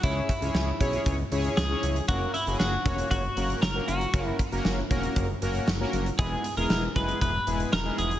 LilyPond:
<<
  \new Staff \with { instrumentName = "Clean electric guitar" } { \time 4/4 \key fis \mixolydian \tempo 4 = 117 e'2 r4 gis'4 | fis'8 e'8 fis'4 fis'4 ais'8 fis'8~ | fis'8 r2. r8 | gis'8. ais'8. b'8 b'4 ais'8 gis'8 | }
  \new Staff \with { instrumentName = "Analog polysynth" } { \time 4/4 \key fis \mixolydian <cis' e' gis' cis''>8 r16 <cis' e' gis' cis''>8 r16 <cis' e' gis' cis''>8. r16 <cis' e' gis' cis''>8 r16 <cis' e' gis' cis''>8 r16 | <ais cis' fis' ais'>8 r16 <ais cis' fis' gis'>8 r16 <ais cis' fis' cis''>8. r16 <ais cis' fis' ais'>8 r16 <ais cis' fis' ais'>8 r16 | <ais cis' fis' ais'>8 r16 <ais cis' fis' ais'>8 r16 <ais cis' fis' ais'>8. r16 <ais cis' fis' ais'>8 r16 <ais cis' fis' ais'>8 r16 | <gis b e' gis'>8 r16 <gis b e' gis'>8 r16 <gis b e' gis'>8. r16 <gis b e' gis'>8 r16 <gis b e' gis'>8 r16 | }
  \new Staff \with { instrumentName = "Analog synth bass" } { \clef bass \time 4/4 \key fis \mixolydian cis,8 r16 cis,16 cis,8 b,,8 cis,8 cis,8 cis,8 cis,8 | fis,,8 r16 fis,,16 fis,,8 e,,8 fis,,8 fis,,8 fis,,8 fis,,8 | fis,,8 r16 fis,,16 fis,,8 e,,8 fis,,8 fis,,8 fis,,8 fis,,8 | e,,8 r16 e,,16 e,,8 fis,,8 e,,8 e,,8 e,,8 e,,8 | }
  \new DrumStaff \with { instrumentName = "Drums" } \drummode { \time 4/4 <hh bd>8 <hh bd>16 hh16 sn8 <hh bd>16 hh16 <hh bd>8 hh16 hh16 sn8 hh16 hh16 | <hh bd>8 hh16 hh16 sn8 <hh bd>16 hh16 <hh bd>8 hh16 hh16 sn8 hh16 hh16 | <hh bd>8 <hh bd>16 hh16 sn8 <hh bd>16 hh16 <hh bd>8 hh16 hh16 sn8 hh16 hh16 | <hh bd>8 hh16 hh16 sn8 <hh bd>16 hh16 <hh bd>8 hh16 hh16 sn8 hh16 hh16 | }
>>